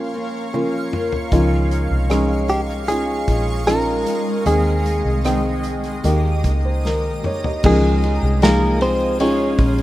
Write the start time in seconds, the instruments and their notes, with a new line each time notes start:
Already playing: grand piano A#2 A#3 C#4 F4, steel-string acoustic guitar F3 A#3 C#4 F4, ambient pad A#4 C#5 F5 C#6
0.14 steel-string acoustic guitar A#3 C#4 F4
0.53 steel-string acoustic guitar F3 A#3 C#4 F4, grand piano A#3 C#4 F4, high tom
0.92 steel-string acoustic guitar A#3 C#4 F4, mid tom
1.12 floor tom
1.31 fingered electric bass C#2, steel-string acoustic guitar C#3 F3 G#3 D#4 F4, grand piano D#3 C#4 D#4 F4, ambient pad G#3 D#5 C#6, kick, closed hi-hat
1.71 closed hi-hat
1.91 fingered electric bass C2
2.09 steel-string acoustic guitar F3 G#3 D#4 F4, grand piano G#3 C#4 D#4, cross-stick, closed hi-hat
2.49 clean electric guitar G4, closed hi-hat
2.70 cross-stick
2.88 grand piano C#4 D#4 F4, clean electric guitar G#4, closed hi-hat
3.28 fingered electric bass A#1, steel-string acoustic guitar G#3 D#4 F4, kick, closed hi-hat
3.67 steel-string acoustic guitar F3 G#3 D#4 F4, grand piano C#4 D#4 F4, clean electric guitar A#4, cross-stick, closed hi-hat
4.06 steel-string acoustic guitar G#3 D#4 F4, closed hi-hat
4.45 fingered electric bass D#2, steel-string acoustic guitar D#3 G#3 C4 G#4, grand piano D#3 C4 D#4 G#4, clean electric guitar G#4, ambient pad C6 D#6, closed hi-hat
4.86 closed hi-hat
5.05 fingered electric bass C2
5.24 steel-string acoustic guitar D#3 G#3 C4 G#4, grand piano C4 D#4 G5, cross-stick, closed hi-hat
5.64 closed hi-hat
5.84 cross-stick, closed hi-hat
6.04 fingered electric bass D#2, steel-string acoustic guitar D#3 A#3 D#4 G4, grand piano D#3 A#3 D#4 G4, ambient pad G4 A#5, closed hi-hat
6.43 fingered electric bass C#2, steel-string acoustic guitar A#3 D#4 G4, kick, closed hi-hat
6.65 grand piano C5
6.84 steel-string acoustic guitar D#3 A#3 D#4 G4, grand piano A#4, snare
7.23 steel-string acoustic guitar A#3 D#4 G4, grand piano C#5, mid tom
7.44 grand piano D#5, floor tom
7.63 fingered electric bass C#2, steel-string acoustic guitar C#3 F3 G#3 D#4 F4, grand piano D#3 C#4 D#4 F4 G#4, clean electric guitar G#3 G#4, ambient pad G#4 F5 G#5 D#6, kick, crash
8.02 steel-string acoustic guitar G#3 D#4 F4, ride
8.23 fingered electric bass C2
8.42 steel-string acoustic guitar F3 G#3 D#4 F4, grand piano G#3 D#4 F4 G#4, clean electric guitar A#3 A#4, snare, ride
8.81 clean electric guitar C4 C5, ride
9.01 ride
9.19 steel-string acoustic guitar F3 G#3 D#4 F4, grand piano C#4 D#4 F4 G#4, clean electric guitar C#4 C#5, ride
9.58 fingered electric bass A#1, steel-string acoustic guitar G#3 D#4 F4, kick, ride
9.78 ride